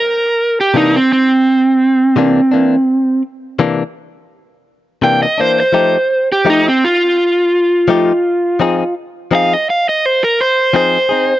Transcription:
<<
  \new Staff \with { instrumentName = "Overdriven electric guitar" } { \time 4/4 \key f \major \tempo 4 = 84 bes'8. g'16 ees'16 c'16 c'2~ c'8~ | c'8 r2 r8 g''16 ees''16 c''16 c''16~ | c''8. g'16 ees'16 c'16 f'2~ f'8~ | f'8 r8 f''16 ees''16 f''16 ees''16 c''16 bes'16 c''8 c''4 | }
  \new Staff \with { instrumentName = "Clean electric guitar" } { \time 4/4 \key f \major r4 <c e bes d'>8 r4. <c e bes d'>8 <e bes d'>8 | r4 <c e bes d'>8 r4. <c e bes d'>8 <e bes d'>8 | <f a ees' g'>8 r8 <f a ees' g'>8 r4. <f a ees' g'>8 r8 | <f c' ees' aes'>8 r8 <f c' ees' aes'>8 r4. <f c' ees' aes'>8 <c' ees' aes'>8 | }
>>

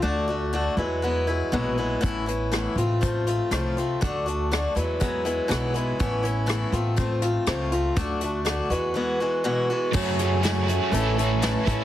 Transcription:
<<
  \new Staff \with { instrumentName = "Steel-string acoustic guitar" } { \time 4/4 \key a \major \tempo 4 = 121 <d a d' fis'>8 <a d' fis'>8 <d a d' fis'>8 <fis gis b e'>8 <fis gis b e'>8 <fis gis b e'>8 <e, b, fis gis b e'>8 <fis gis b e'>8 | <a, e b cis' e'>8 <b cis' e'>8 <a, e b cis' e'>8 <a c' f'>8 <f a c' f'>8 <a c' f'>8 <a, f a c' f'>8 <a c' f'>8 | <d a d' fis'>8 <a d' fis'>8 <d a d' fis'>8 <fis gis b e'>8 <fis gis b e'>8 <fis gis b e'>8 <e, b, fis gis b e'>8 <fis gis b e'>8 | <a, e b cis' e'>8 <b cis' e'>8 <a, e b cis' e'>8 <a c' f'>8 <f a c' f'>8 <a c' f'>8 <a, f a c' f'>8 <a c' f'>8 |
<d a d' fis'>8 <a d' fis'>8 <d a d' fis'>8 <e gis b fis'>8 <e gis b fis'>8 <e gis b fis'>8 <e, b, e gis b fis'>8 <e gis b fis'>8 | <fis, cis fis a cis' gis'>8 <fis a cis' gis'>8 <fis, cis fis a cis' gis'>8 <fis a cis' gis'>8 <e a cis' a'>8 <a cis' a'>8 <a, e a cis' a'>8 <a cis' a'>8 | }
  \new Staff \with { instrumentName = "Overdriven electric guitar" } { \time 4/4 \key a \major r1 | r1 | r1 | r1 |
r1 | <fis, cis fis a cis' fis'>4 <fis a cis' fis'>8 <fis a cis' fis'>8 <a, e a cis' e'>8 <a cis' e'>4 <a cis' e'>8 | }
  \new Staff \with { instrumentName = "Upright bass" } { \clef bass \time 4/4 \key a \major d,4. e,4. bes,,4 | a,,4. a,,4. c,4 | d,4. e,4. b,,4 | a,,4. a,,4. cis,4 |
d,4. e,8 r2 | fis,2 a,,4. a,8 | }
  \new DrumStaff \with { instrumentName = "Drums" } \drummode { \time 4/4 r4 r4 r4 r4 | <hh bd>8 hh8 <hh ss>8 hh8 <hh bd>8 hh8 <hh ss>8 hh8 | <hh bd>8 hh8 <hh ss>8 hh8 <hh bd>8 hh8 <hh ss>8 hh8 | <hh bd>8 hh8 <hh ss>8 hh8 <hh bd>8 hh8 <hh ss>8 hh8 |
<hh bd>8 hh8 <hh ss>8 hh8 r4 r4 | <cymc bd>8 hh8 <hh sn>8 hh8 hh8 hh8 <hh sn>8 <hh bd>8 | }
>>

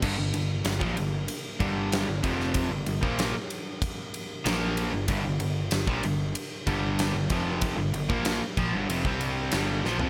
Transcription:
<<
  \new Staff \with { instrumentName = "Tonewheel organ" } { \time 4/4 \key g \minor \tempo 4 = 95 << { f''8 r2. r8 | r1 | r1 | r1 | } \\ { <bes d' g' bes'>1 | <d' g' bes'>1 | <d' g' bes'>1 | <d' g' bes'>1 | } >> }
  \new Staff \with { instrumentName = "Overdriven electric guitar" } { \clef bass \time 4/4 \key g \minor <g, d>16 <g, d>16 <g, d>8 <g, d>16 <bes, f>16 <g, d>8 r8 <g, d g>8. <g, d>16 <f, c f>8~ | <f, c f>16 <g, d>16 <g, d>16 <bes, f bes>8 r4. r16 <bes, f bes>8. <g, d>16 | <g, d>16 <g, d>16 <g, d>8 <g, d>16 <bes, f>16 <g, d>8 r8 <g, d g>8. <g, d>16 <f, c f>8~ | <f, c f>16 <g, d>16 <g, d>16 <bes, f bes>8 r16 <bes, f>16 <g, d>16 <f, c>16 <c g c'>8. <g, d g>8 <bes, f>16 <f c'>16 | }
  \new Staff \with { instrumentName = "Overdriven electric guitar" } { \clef bass \time 4/4 \key g \minor <g, d>16 <g, d>16 <g, d>8 <g, d>16 <bes, f>16 <g, d>8 r8 <g, d g>8. <g, d>16 <f, c f>8~ | <f, c f>16 <g, d>16 <g, d>16 <bes, f bes>8 r4. r16 <bes, f bes>8. <g, d>16 | <g, d>16 <g, d>16 <g, d>8 <g, d>16 <bes, f>16 <g, d>8 r8 <g, d g>8. <g, d>16 <f, c f>8~ | <f, c f>16 <g, d>16 <g, d>16 <bes, f bes>8 r16 <bes, f>16 <g, d>16 <f, c>16 <c g c'>8. <g, d g>8 <bes, f>16 <f c'>16 | }
  \new Staff \with { instrumentName = "Picked electric bass" } { \clef bass \time 4/4 \key g \minor g,,16 g,,16 g,,8 g,,16 bes,,16 g,,8 r8 g,,8. g,,16 f,,8~ | f,,16 g,,16 g,,16 bes,,8 r4. r16 bes,,8. g,,16 | g,,16 g,,16 g,,8 g,,16 bes,,16 g,,8 r8 g,,8. g,,16 f,,8~ | f,,16 g,,16 g,,16 bes,,8 r16 bes,,16 g,,16 f,,16 c,8. g,,8 bes,,16 f,16 | }
  \new DrumStaff \with { instrumentName = "Drums" } \drummode { \time 4/4 <cymc bd>8 cymr8 <cymr sn>16 bd16 cymr8 cymr8 <bd cymr>8 <cymr sn>8 <bd cymr>16 sn16 | <bd cymr>8 cymr16 bd16 <cymr sn>8 cymr8 <bd cymr>8 cymr8 <cymr sn>8 cymr8 | <bd cymr>8 cymr8 <cymr sn>16 bd16 cymr8 cymr8 <bd cymr>8 <cymr sn>8 <bd cymr>8 | <bd cymr>8 cymr16 bd16 <cymr sn>8 <bd cymr>8 cymr16 bd16 cymr8 <cymr sn>8 sn16 tomfh16 | }
>>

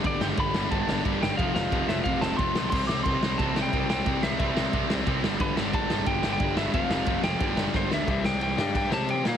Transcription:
<<
  \new Staff \with { instrumentName = "Lead electric guitar" } { \time 4/4 \key c \major \tempo 4 = 179 d''8 g''8 b''4 a''4 r8 g''8 | f''8 f''4 e''8 f''8 a''8 c'''4 | c'''8 d'''8 c'''4 a''8. g''8. g''8~ | g''8 e''8 e''2 r4 |
b'8 d''8 a''4 g''8. g''8. e''8 | f''4. g''4. c''8 e''8 | e''8 g''8 g''8 g''8 g''8 a''8 g''8 f''8 | }
  \new Staff \with { instrumentName = "Distorted electric guitar" } { \clef bass \time 4/4 \key c \major <g, d g>8 <g, d g>8 <g, d g>8 <g, d g>8 <g, d g>8 <g, d g>8 <g, d g>8 <g, d g>8 | <f, c f>8 <f, c f>8 <f, c f>8 <f, c f>8 <f, c f>8 <f, c f>8 <f, c f>8 <f, c f>8 | <c g c'>8 <c g c'>8 <c g c'>8 <c g c'>8 <c g c'>8 <c g c'>8 <c g c'>8 <c g c'>8 | <c g c'>8 <c g c'>8 <c g c'>8 <c g c'>8 <c g c'>8 <c g c'>8 <c g c'>8 <g, d g>8 |
<g, d g>8 <g, d g>8 <g, d g>8 <g, d g>8 <g, d g>8 <g, d g>8 <g, d g>8 <g, d g>8 | <f, c f>8 <f, c f>8 <f, c f>8 <f, c f>8 <g, d g>8 <g, d g>8 <g, d g>8 <g, d g>8 | <c g c'>4. <g d' g'>4 <c' g' c''>4 <bes f' bes'>8 | }
  \new Staff \with { instrumentName = "Distorted electric guitar" } { \clef bass \time 4/4 \key c \major <g, d g>8 <g, d g>8 <g, d g>8 <g, d g>8 <g, d g>8 <g, d g>8 <g, d g>8 <g, d g>8 | <f, c f>8 <f, c f>8 <f, c f>8 <f, c f>8 <f, c f>8 <f, c f>8 <f, c f>8 <f, c f>8 | <c g c'>8 <c g c'>8 <c g c'>8 <c g c'>8 <c g c'>8 <c g c'>8 <c g c'>8 <c g c'>8 | <c g c'>8 <c g c'>8 <c g c'>8 <c g c'>8 <c g c'>8 <c g c'>8 <c g c'>8 <g, d g>8 |
<g, d g>8 <g, d g>8 <g, d g>8 <g, d g>8 <g, d g>8 <g, d g>8 <g, d g>8 <g, d g>8 | <f, c f>8 <f, c f>8 <f, c f>8 <f, c f>8 <g, d g>8 <g, d g>8 <g, d g>8 <g, d g>8 | r1 | }
  \new Staff \with { instrumentName = "Picked electric bass" } { \clef bass \time 4/4 \key c \major g,,8 g,,8 g,,8 g,,8 g,,8 g,,8 g,,8 g,,8 | f,,8 f,,8 f,,8 f,,8 f,,8 f,,8 f,,8 b,,8 | c,8 c,8 c,8 c,8 c,8 c,8 c,8 c,8 | c,8 c,8 c,8 c,8 c,8 c,8 c,8 g,,8 |
g,,8 g,,8 g,,8 g,,8 g,,8 g,,8 g,,8 g,,8 | f,,8 f,,8 f,,8 f,,8 g,,8 g,,8 g,,8 d,8 | c,4. g,4 c4 bes,8 | }
  \new DrumStaff \with { instrumentName = "Drums" } \drummode { \time 4/4 <bd cymr>8 sn8 <bd cymr>8 sn8 <bd cymr>8 sn8 <bd cymr>8 sn8 | <bd cymr>8 sn8 <bd cymr>8 sn8 <bd cymr>8 sn8 <bd cymr>8 sn8 | <cymc bd>8 sn8 <bd cymr>8 sn8 <bd cymr>8 sn8 <bd cymr>8 sn8 | <bd cymr>8 sn8 <bd cymr>8 sn8 <bd cymr>8 sn8 <bd cymr>8 sn8 |
<bd cymr>8 sn8 <bd cymr>8 sn8 <bd cymr>8 sn8 <bd cymr>8 sn8 | <bd cymr>8 sn8 <bd cymr>8 sn8 <bd cymr>8 sn8 <bd sn>8 sn8 | <cymc bd>8 sn8 cymc8 sn8 <cymc bd>8 sn8 cymc8 sn8 | }
>>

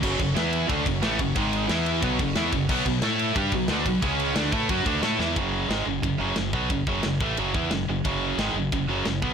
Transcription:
<<
  \new Staff \with { instrumentName = "String section" } { \time 4/4 \key fis \minor \tempo 4 = 179 <a' cis'' fis'' cis'''>4 <e' b' b'' e'''>4 <a' cis'' fis'' cis'''>2 | <dis' gis' gis'' dis'''>4 <e' b' b'' e'''>4 <a' cis'' fis'' cis'''>2 | <fis' b' b'' fis'''>4 <e' a' a'' e'''>4 <fis' b' b'' fis'''>2 | <gis' cis'' cis''' gis'''>4 <fis' b' b'' fis'''>2. |
r1 | r1 | r1 | }
  \new Staff \with { instrumentName = "Overdriven electric guitar" } { \clef bass \time 4/4 \key fis \minor <fis, cis fis>8 <fis, cis>8 <e b e'>4 <d a d'>8 <fis, cis>8 <a, e a>8 <fis, cis>8 | <gis, dis gis>4 <e b e'>4 <b, fis b>8 <fis, cis>8 <e b e'>8 <fis, cis>8 | <b, fis b>8 <b, fis>8 <a e' a'>4 <g d' g'>8 <b, fis>8 <d a d'>8 <b, fis>8 | <cis gis cis'>4 <d a d'>8 <a e' a'>8 <fis cis' fis'>8 <d a d'>8 <a e' a'>8 <e b e'>8 |
r1 | r1 | r1 | }
  \new Staff \with { instrumentName = "Distorted electric guitar" } { \clef bass \time 4/4 \key fis \minor <fis, cis fis>8 <fis, cis>8 <e b e'>4 <d a d'>8 <fis, cis>8 <a, e a>8 <fis, cis>8 | <gis, dis gis>4 <e b e'>4 <b, fis b>8 <fis, cis>8 <e b e'>8 <fis, cis>8 | <b, fis b>8 <b, fis>8 <a e' a'>4 <g d' g'>8 <b, fis>8 <d a d'>8 <b, fis>8 | <cis gis cis'>4 <d a d'>8 <a e' a'>8 <fis cis' fis'>8 <d a d'>8 <a e' a'>8 <e b e'>8 |
<fis, cis fis>4 <gis, dis gis>8 <fis, cis>8 <fis, cis>8 <fis, cis fis>8 <fis, cis>8 <b, fis b>8 | <fis, cis>8 <fis, cis fis>8 <fis, cis>8 <a, e a>8 <fis, cis fis>8 <e b e'>8 <fis, cis>8 <fis, cis>8 | <fis, cis fis>4 <gis, dis gis>8 <fis, cis>8 <fis, cis>8 <fis, cis fis>8 <fis, cis>8 <b, fis b>8 | }
  \new Staff \with { instrumentName = "Distorted electric guitar" } { \clef bass \time 4/4 \key fis \minor <fis, cis fis>8 <fis, cis>8 <e b e'>4 <d a d'>8 <fis, cis>8 <a, e a>8 <fis, cis>8 | <gis, dis gis>4 <e b e'>4 <b, fis b>8 <fis, cis>8 <e b e'>8 <fis, cis>8 | <b, fis b>8 <b, fis>8 <a e' a'>4 <g d' g'>8 <b, fis>8 <d a d'>8 <b, fis>8 | <cis gis cis'>4 <d a d'>8 <a e' a'>8 <fis cis' fis'>8 <d a d'>8 <a e' a'>8 <e b e'>8 |
<fis, cis fis>4 <gis, dis gis>8 <fis, cis>8 <fis, cis>8 <fis, cis fis>8 <fis, cis>8 <b, fis b>8 | <fis, cis>8 <fis, cis fis>8 <fis, cis>8 <a, e a>8 <fis, cis fis>8 <e b e'>8 <fis, cis>8 <fis, cis>8 | <fis, cis fis>4 <gis, dis gis>8 <fis, cis>8 <fis, cis>8 <fis, cis fis>8 <fis, cis>8 <b, fis b>8 | }
  \new Staff \with { instrumentName = "Fingered electric bass" } { \clef bass \time 4/4 \key fis \minor fis,,8 fis,,8 e,4 d,8 fis,,8 a,,8 fis,,8 | gis,,4 e,4 b,,8 fis,,8 e,8 fis,,8 | b,,8 b,,8 a,4 g,8 b,,8 d,8 b,,8 | cis,4 d,8 a,8 fis,8 d,8 a,8 e,8 |
fis,,4 gis,,8 fis,,8 fis,,8 fis,,8 fis,,8 b,,8 | fis,,8 fis,,8 fis,,8 a,,8 fis,,8 e,8 fis,,8 fis,,8 | fis,,4 gis,,8 fis,,8 fis,,8 fis,,8 fis,,8 b,,8 | }
  \new DrumStaff \with { instrumentName = "Drums" } \drummode { \time 4/4 <cymc bd>8 <bd cymr>8 <cymr sn>8 cymr8 <bd cymr>8 <bd cymr>8 <cymr sn>8 <bd cymr>8 | <bd cymr>8 cymr8 <cymr sn>8 cymr8 <bd cymr>8 <bd cymr>8 <cymr sn>8 <bd cymr>8 | <cymc bd>8 <bd cymr>8 <cymr sn>8 cymr8 <bd cymr>8 <bd cymr>8 <cymr sn>8 <bd cymr>8 | <bd cymr>8 cymr8 <cymr sn>8 <bd cymr>8 <bd cymr>8 <bd cymr>8 <cymr sn>8 sn8 |
<bd rb>4 <rb sn>4 <bd rb>4 <rb sn>8 bd8 | <bd rb>8 bd8 <rb sn>8 bd8 rb8 bd8 <rb sn>4 | <bd rb>4 <rb sn>4 <bd rb>4 <rb sn>8 bd8 | }
>>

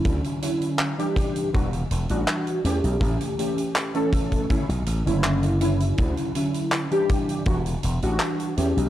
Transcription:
<<
  \new Staff \with { instrumentName = "Synth keys" } { \time 4/4 \key e \dorian \tempo 4 = 81 <d fis cis' e'>8 <d fis cis' e'>8. <e g d' g'>8. <e g d' fis'>16 r8 <e g d' fis'>8. <e a cis' g'>8~ | <e a cis' g'>8 <e a cis' g'>8. <e a cis' a'>8. <d a cis' e'>16 r8 <d a cis' e'>8. <d fis cis' e'>8~ | <d fis cis' e'>8 <d fis cis' e'>8. <e g d' g'>8. <e g d' fis'>16 r8 <e g d' fis'>8. <e a cis' g'>8 | }
  \new Staff \with { instrumentName = "Slap bass" } { \clef bass \time 4/4 \key e \dorian d,16 r4. r16 e,,8 e,,16 a,,16 r8 e,16 b,,16 | a,,16 r2 b,,16 a,,16 fis,,4~ fis,,16 | d,16 r4. r16 e,,8 e,,16 a,,16 r8 e,16 b,,16 | }
  \new DrumStaff \with { instrumentName = "Drums" } \drummode { \time 4/4 <hh bd>16 hh16 hh16 hh16 <hc hh>16 hh16 <hh bd>16 hh16 <hh bd>16 hh16 hh16 hh16 <hc hh>16 hh16 hh16 hh16 | <hh bd>16 hh16 hh16 hh16 <hc hh>16 hh16 <hh bd>16 <hh bd>16 <hh bd>16 hh16 hh16 hh16 <hc hh>16 hh16 hh16 hh16 | <hh bd>16 hh16 hh16 hh16 <hc hh>16 hh16 <hh bd>16 hh16 <hh bd>16 hh16 hh16 hh16 <hc hh>16 hh16 hh16 hh16 | }
>>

